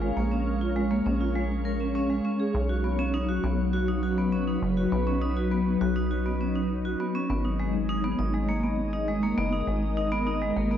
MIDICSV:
0, 0, Header, 1, 4, 480
1, 0, Start_track
1, 0, Tempo, 594059
1, 137, Time_signature, 4, 2, 24, 8
1, 8706, End_track
2, 0, Start_track
2, 0, Title_t, "Ambient pad"
2, 0, Program_c, 0, 92
2, 0, Note_on_c, 0, 56, 79
2, 0, Note_on_c, 0, 61, 69
2, 0, Note_on_c, 0, 70, 87
2, 0, Note_on_c, 0, 73, 77
2, 0, Note_on_c, 0, 77, 84
2, 2055, Note_on_c, 0, 54, 80
2, 2057, Note_off_c, 0, 56, 0
2, 2057, Note_off_c, 0, 70, 0
2, 2983, Note_on_c, 0, 71, 89
2, 3003, Note_on_c, 0, 63, 73
2, 3574, Note_off_c, 0, 77, 0
2, 5896, Note_off_c, 0, 54, 0
2, 5896, Note_off_c, 0, 71, 0
2, 5898, Note_on_c, 0, 56, 85
2, 6534, Note_on_c, 0, 75, 82
2, 7165, Note_on_c, 0, 70, 94
2, 7355, Note_off_c, 0, 73, 0
2, 7433, Note_off_c, 0, 61, 0
2, 8706, Note_off_c, 0, 56, 0
2, 8706, Note_off_c, 0, 63, 0
2, 8706, Note_off_c, 0, 70, 0
2, 8706, Note_off_c, 0, 75, 0
2, 8706, End_track
3, 0, Start_track
3, 0, Title_t, "Vibraphone"
3, 0, Program_c, 1, 11
3, 15, Note_on_c, 1, 56, 70
3, 92, Note_off_c, 1, 56, 0
3, 135, Note_on_c, 1, 58, 75
3, 250, Note_off_c, 1, 58, 0
3, 255, Note_on_c, 1, 61, 70
3, 370, Note_off_c, 1, 61, 0
3, 496, Note_on_c, 1, 65, 73
3, 572, Note_off_c, 1, 65, 0
3, 615, Note_on_c, 1, 56, 78
3, 692, Note_off_c, 1, 56, 0
3, 736, Note_on_c, 1, 58, 98
3, 812, Note_off_c, 1, 58, 0
3, 855, Note_on_c, 1, 61, 91
3, 901, Note_off_c, 1, 61, 0
3, 976, Note_on_c, 1, 65, 71
3, 1090, Note_off_c, 1, 65, 0
3, 1095, Note_on_c, 1, 56, 75
3, 1141, Note_off_c, 1, 56, 0
3, 1334, Note_on_c, 1, 70, 69
3, 1449, Note_off_c, 1, 70, 0
3, 1456, Note_on_c, 1, 61, 68
3, 1532, Note_off_c, 1, 61, 0
3, 1576, Note_on_c, 1, 61, 93
3, 1690, Note_off_c, 1, 61, 0
3, 1696, Note_on_c, 1, 56, 70
3, 1772, Note_off_c, 1, 56, 0
3, 1816, Note_on_c, 1, 61, 75
3, 1892, Note_off_c, 1, 61, 0
3, 1936, Note_on_c, 1, 68, 68
3, 2012, Note_off_c, 1, 68, 0
3, 2176, Note_on_c, 1, 66, 67
3, 2252, Note_off_c, 1, 66, 0
3, 2295, Note_on_c, 1, 59, 70
3, 2372, Note_off_c, 1, 59, 0
3, 2416, Note_on_c, 1, 61, 94
3, 2492, Note_off_c, 1, 61, 0
3, 2536, Note_on_c, 1, 63, 99
3, 2582, Note_off_c, 1, 63, 0
3, 2655, Note_on_c, 1, 66, 73
3, 2770, Note_off_c, 1, 66, 0
3, 2776, Note_on_c, 1, 59, 72
3, 2822, Note_off_c, 1, 59, 0
3, 3016, Note_on_c, 1, 66, 94
3, 3062, Note_off_c, 1, 66, 0
3, 3136, Note_on_c, 1, 63, 92
3, 3182, Note_off_c, 1, 63, 0
3, 3256, Note_on_c, 1, 66, 72
3, 3332, Note_off_c, 1, 66, 0
3, 3376, Note_on_c, 1, 59, 71
3, 3452, Note_off_c, 1, 59, 0
3, 3495, Note_on_c, 1, 61, 78
3, 3610, Note_off_c, 1, 61, 0
3, 3615, Note_on_c, 1, 63, 74
3, 3730, Note_off_c, 1, 63, 0
3, 3856, Note_on_c, 1, 66, 72
3, 3932, Note_off_c, 1, 66, 0
3, 3976, Note_on_c, 1, 59, 77
3, 4052, Note_off_c, 1, 59, 0
3, 4096, Note_on_c, 1, 61, 92
3, 4172, Note_off_c, 1, 61, 0
3, 4215, Note_on_c, 1, 63, 98
3, 4262, Note_off_c, 1, 63, 0
3, 4336, Note_on_c, 1, 66, 73
3, 4450, Note_off_c, 1, 66, 0
3, 4456, Note_on_c, 1, 59, 81
3, 4502, Note_off_c, 1, 59, 0
3, 4696, Note_on_c, 1, 66, 97
3, 4742, Note_off_c, 1, 66, 0
3, 4816, Note_on_c, 1, 63, 96
3, 4862, Note_off_c, 1, 63, 0
3, 4937, Note_on_c, 1, 66, 78
3, 5013, Note_off_c, 1, 66, 0
3, 5057, Note_on_c, 1, 59, 70
3, 5133, Note_off_c, 1, 59, 0
3, 5176, Note_on_c, 1, 61, 71
3, 5290, Note_off_c, 1, 61, 0
3, 5296, Note_on_c, 1, 63, 73
3, 5410, Note_off_c, 1, 63, 0
3, 5535, Note_on_c, 1, 66, 74
3, 5612, Note_off_c, 1, 66, 0
3, 5656, Note_on_c, 1, 59, 77
3, 5732, Note_off_c, 1, 59, 0
3, 5776, Note_on_c, 1, 61, 92
3, 5853, Note_off_c, 1, 61, 0
3, 5897, Note_on_c, 1, 59, 93
3, 5942, Note_off_c, 1, 59, 0
3, 6017, Note_on_c, 1, 63, 67
3, 6131, Note_off_c, 1, 63, 0
3, 6136, Note_on_c, 1, 56, 71
3, 6182, Note_off_c, 1, 56, 0
3, 6375, Note_on_c, 1, 63, 105
3, 6422, Note_off_c, 1, 63, 0
3, 6497, Note_on_c, 1, 59, 101
3, 6542, Note_off_c, 1, 59, 0
3, 6617, Note_on_c, 1, 63, 79
3, 6693, Note_off_c, 1, 63, 0
3, 6737, Note_on_c, 1, 56, 74
3, 6813, Note_off_c, 1, 56, 0
3, 6857, Note_on_c, 1, 58, 80
3, 6970, Note_off_c, 1, 58, 0
3, 6976, Note_on_c, 1, 59, 70
3, 7090, Note_off_c, 1, 59, 0
3, 7216, Note_on_c, 1, 63, 73
3, 7292, Note_off_c, 1, 63, 0
3, 7337, Note_on_c, 1, 56, 81
3, 7413, Note_off_c, 1, 56, 0
3, 7457, Note_on_c, 1, 58, 96
3, 7533, Note_off_c, 1, 58, 0
3, 7577, Note_on_c, 1, 59, 103
3, 7622, Note_off_c, 1, 59, 0
3, 7697, Note_on_c, 1, 63, 72
3, 7811, Note_off_c, 1, 63, 0
3, 7817, Note_on_c, 1, 56, 77
3, 7862, Note_off_c, 1, 56, 0
3, 8057, Note_on_c, 1, 63, 97
3, 8102, Note_off_c, 1, 63, 0
3, 8176, Note_on_c, 1, 59, 101
3, 8222, Note_off_c, 1, 59, 0
3, 8298, Note_on_c, 1, 63, 84
3, 8373, Note_off_c, 1, 63, 0
3, 8417, Note_on_c, 1, 56, 77
3, 8493, Note_off_c, 1, 56, 0
3, 8537, Note_on_c, 1, 58, 77
3, 8651, Note_off_c, 1, 58, 0
3, 8656, Note_on_c, 1, 59, 72
3, 8706, Note_off_c, 1, 59, 0
3, 8706, End_track
4, 0, Start_track
4, 0, Title_t, "Acid bass"
4, 0, Program_c, 2, 38
4, 0, Note_on_c, 2, 32, 87
4, 98, Note_off_c, 2, 32, 0
4, 136, Note_on_c, 2, 34, 95
4, 826, Note_off_c, 2, 34, 0
4, 857, Note_on_c, 2, 34, 78
4, 1786, Note_off_c, 2, 34, 0
4, 2056, Note_on_c, 2, 35, 97
4, 2746, Note_off_c, 2, 35, 0
4, 2777, Note_on_c, 2, 35, 78
4, 3706, Note_off_c, 2, 35, 0
4, 3736, Note_on_c, 2, 30, 83
4, 3938, Note_off_c, 2, 30, 0
4, 3976, Note_on_c, 2, 35, 97
4, 4666, Note_off_c, 2, 35, 0
4, 4697, Note_on_c, 2, 35, 79
4, 5626, Note_off_c, 2, 35, 0
4, 5897, Note_on_c, 2, 32, 94
4, 6586, Note_off_c, 2, 32, 0
4, 6617, Note_on_c, 2, 32, 83
4, 7547, Note_off_c, 2, 32, 0
4, 7577, Note_on_c, 2, 30, 87
4, 7779, Note_off_c, 2, 30, 0
4, 7816, Note_on_c, 2, 32, 95
4, 8506, Note_off_c, 2, 32, 0
4, 8536, Note_on_c, 2, 32, 77
4, 8706, Note_off_c, 2, 32, 0
4, 8706, End_track
0, 0, End_of_file